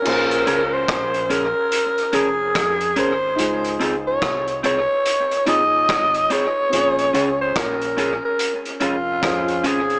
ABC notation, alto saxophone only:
X:1
M:4/4
L:1/16
Q:"Swing 16ths" 1/4=72
K:Bbdor
V:1 name="Alto saxophone"
B3 c3 B4 A4 c2- | c2 z d3 d4 e4 d2- | d3 c B3 B2 z F4 A2 |]